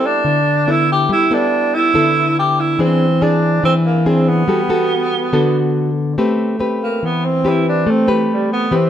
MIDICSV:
0, 0, Header, 1, 3, 480
1, 0, Start_track
1, 0, Tempo, 423430
1, 1231, Time_signature, 4, 2, 24, 8
1, 10087, End_track
2, 0, Start_track
2, 0, Title_t, "Nylon-string guitar"
2, 0, Program_c, 0, 24
2, 0, Note_on_c, 0, 55, 68
2, 0, Note_on_c, 0, 59, 47
2, 0, Note_on_c, 0, 64, 50
2, 0, Note_on_c, 0, 69, 54
2, 252, Note_off_c, 0, 55, 0
2, 278, Note_on_c, 0, 50, 65
2, 435, Note_off_c, 0, 59, 0
2, 439, Note_off_c, 0, 64, 0
2, 441, Note_off_c, 0, 69, 0
2, 763, Note_on_c, 0, 59, 53
2, 769, Note_on_c, 0, 64, 50
2, 774, Note_on_c, 0, 69, 53
2, 1211, Note_off_c, 0, 50, 0
2, 1238, Note_on_c, 0, 55, 67
2, 1440, Note_off_c, 0, 59, 0
2, 1440, Note_off_c, 0, 64, 0
2, 1444, Note_off_c, 0, 69, 0
2, 1484, Note_on_c, 0, 59, 62
2, 1489, Note_on_c, 0, 64, 56
2, 1495, Note_on_c, 0, 69, 68
2, 2160, Note_off_c, 0, 59, 0
2, 2162, Note_off_c, 0, 64, 0
2, 2165, Note_off_c, 0, 69, 0
2, 2171, Note_off_c, 0, 55, 0
2, 2198, Note_on_c, 0, 50, 65
2, 2203, Note_on_c, 0, 59, 57
2, 2211, Note_on_c, 0, 64, 55
2, 2212, Note_on_c, 0, 69, 60
2, 3118, Note_off_c, 0, 59, 0
2, 3120, Note_off_c, 0, 64, 0
2, 3124, Note_off_c, 0, 69, 0
2, 3133, Note_off_c, 0, 50, 0
2, 3161, Note_on_c, 0, 52, 68
2, 3165, Note_on_c, 0, 60, 55
2, 3171, Note_on_c, 0, 62, 56
2, 3173, Note_on_c, 0, 68, 62
2, 3467, Note_off_c, 0, 60, 0
2, 3468, Note_off_c, 0, 62, 0
2, 3472, Note_off_c, 0, 68, 0
2, 3642, Note_on_c, 0, 60, 55
2, 3650, Note_on_c, 0, 62, 55
2, 3652, Note_on_c, 0, 68, 52
2, 4094, Note_off_c, 0, 52, 0
2, 4121, Note_on_c, 0, 52, 67
2, 4561, Note_off_c, 0, 60, 0
2, 4562, Note_off_c, 0, 62, 0
2, 4564, Note_off_c, 0, 68, 0
2, 4600, Note_on_c, 0, 60, 58
2, 4606, Note_on_c, 0, 62, 54
2, 4607, Note_on_c, 0, 68, 55
2, 5053, Note_off_c, 0, 52, 0
2, 5058, Note_off_c, 0, 60, 0
2, 5059, Note_off_c, 0, 62, 0
2, 5061, Note_off_c, 0, 68, 0
2, 5076, Note_on_c, 0, 55, 66
2, 5082, Note_on_c, 0, 59, 51
2, 5084, Note_on_c, 0, 66, 56
2, 5089, Note_on_c, 0, 69, 54
2, 5217, Note_off_c, 0, 59, 0
2, 5220, Note_off_c, 0, 66, 0
2, 5222, Note_off_c, 0, 69, 0
2, 5320, Note_on_c, 0, 59, 60
2, 5325, Note_on_c, 0, 66, 59
2, 5330, Note_on_c, 0, 69, 67
2, 5999, Note_off_c, 0, 59, 0
2, 6001, Note_off_c, 0, 66, 0
2, 6003, Note_off_c, 0, 69, 0
2, 6011, Note_off_c, 0, 55, 0
2, 6040, Note_on_c, 0, 50, 66
2, 6043, Note_on_c, 0, 59, 56
2, 6047, Note_on_c, 0, 69, 64
2, 6050, Note_on_c, 0, 66, 49
2, 6683, Note_off_c, 0, 59, 0
2, 6684, Note_off_c, 0, 66, 0
2, 6686, Note_off_c, 0, 69, 0
2, 6974, Note_off_c, 0, 50, 0
2, 7004, Note_on_c, 0, 57, 70
2, 7007, Note_on_c, 0, 60, 53
2, 7007, Note_on_c, 0, 67, 55
2, 7013, Note_on_c, 0, 71, 55
2, 7440, Note_off_c, 0, 60, 0
2, 7443, Note_off_c, 0, 67, 0
2, 7444, Note_off_c, 0, 71, 0
2, 7475, Note_on_c, 0, 60, 55
2, 7482, Note_on_c, 0, 67, 53
2, 7487, Note_on_c, 0, 71, 61
2, 7936, Note_off_c, 0, 57, 0
2, 7965, Note_on_c, 0, 52, 69
2, 8396, Note_off_c, 0, 60, 0
2, 8399, Note_off_c, 0, 67, 0
2, 8402, Note_off_c, 0, 71, 0
2, 8439, Note_on_c, 0, 60, 53
2, 8444, Note_on_c, 0, 67, 54
2, 8454, Note_on_c, 0, 71, 60
2, 8895, Note_off_c, 0, 52, 0
2, 8913, Note_off_c, 0, 60, 0
2, 8916, Note_on_c, 0, 57, 68
2, 8917, Note_off_c, 0, 67, 0
2, 8919, Note_off_c, 0, 71, 0
2, 9152, Note_on_c, 0, 60, 57
2, 9158, Note_on_c, 0, 67, 62
2, 9163, Note_on_c, 0, 71, 63
2, 9834, Note_off_c, 0, 60, 0
2, 9837, Note_off_c, 0, 67, 0
2, 9838, Note_off_c, 0, 71, 0
2, 9850, Note_off_c, 0, 57, 0
2, 9874, Note_on_c, 0, 52, 70
2, 9883, Note_on_c, 0, 60, 52
2, 9883, Note_on_c, 0, 67, 53
2, 9886, Note_on_c, 0, 71, 61
2, 10087, Note_off_c, 0, 52, 0
2, 10087, Note_off_c, 0, 60, 0
2, 10087, Note_off_c, 0, 67, 0
2, 10087, Note_off_c, 0, 71, 0
2, 10087, End_track
3, 0, Start_track
3, 0, Title_t, "Tenor saxophone"
3, 0, Program_c, 1, 66
3, 72, Note_on_c, 1, 62, 92
3, 806, Note_on_c, 1, 64, 88
3, 823, Note_off_c, 1, 62, 0
3, 1019, Note_off_c, 1, 64, 0
3, 1043, Note_on_c, 1, 67, 87
3, 1242, Note_off_c, 1, 67, 0
3, 1276, Note_on_c, 1, 64, 98
3, 1519, Note_on_c, 1, 62, 99
3, 1536, Note_off_c, 1, 64, 0
3, 1977, Note_on_c, 1, 64, 97
3, 1994, Note_off_c, 1, 62, 0
3, 2684, Note_off_c, 1, 64, 0
3, 2711, Note_on_c, 1, 67, 85
3, 2946, Note_on_c, 1, 64, 82
3, 2963, Note_off_c, 1, 67, 0
3, 3186, Note_on_c, 1, 60, 91
3, 3203, Note_off_c, 1, 64, 0
3, 3659, Note_on_c, 1, 62, 86
3, 3676, Note_off_c, 1, 60, 0
3, 4126, Note_off_c, 1, 62, 0
3, 4139, Note_on_c, 1, 60, 84
3, 4241, Note_off_c, 1, 60, 0
3, 4376, Note_on_c, 1, 58, 75
3, 4623, Note_on_c, 1, 60, 80
3, 4640, Note_off_c, 1, 58, 0
3, 4858, Note_on_c, 1, 59, 77
3, 4875, Note_off_c, 1, 60, 0
3, 6526, Note_off_c, 1, 59, 0
3, 7747, Note_on_c, 1, 58, 79
3, 7996, Note_on_c, 1, 59, 74
3, 8013, Note_off_c, 1, 58, 0
3, 8220, Note_on_c, 1, 60, 79
3, 8237, Note_off_c, 1, 59, 0
3, 8487, Note_on_c, 1, 64, 88
3, 8504, Note_off_c, 1, 60, 0
3, 8700, Note_off_c, 1, 64, 0
3, 8718, Note_on_c, 1, 62, 74
3, 8966, Note_on_c, 1, 60, 72
3, 8983, Note_off_c, 1, 62, 0
3, 9179, Note_off_c, 1, 60, 0
3, 9194, Note_on_c, 1, 52, 47
3, 9375, Note_off_c, 1, 52, 0
3, 9444, Note_on_c, 1, 55, 71
3, 9658, Note_off_c, 1, 55, 0
3, 9665, Note_on_c, 1, 59, 81
3, 9931, Note_on_c, 1, 60, 75
3, 9948, Note_off_c, 1, 59, 0
3, 10087, Note_off_c, 1, 60, 0
3, 10087, End_track
0, 0, End_of_file